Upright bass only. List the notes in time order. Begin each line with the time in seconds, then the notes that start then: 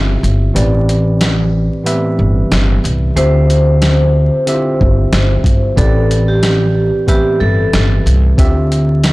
Already playing: G1
0.23 G1
0.56 A1
2.19 G1
2.51 G1
2.84 C2
3.17 D2
4.81 G1
5.12 G1
5.44 G1
5.77 A1
7.41 G1
7.73 G1
8.06 C2
8.38 D2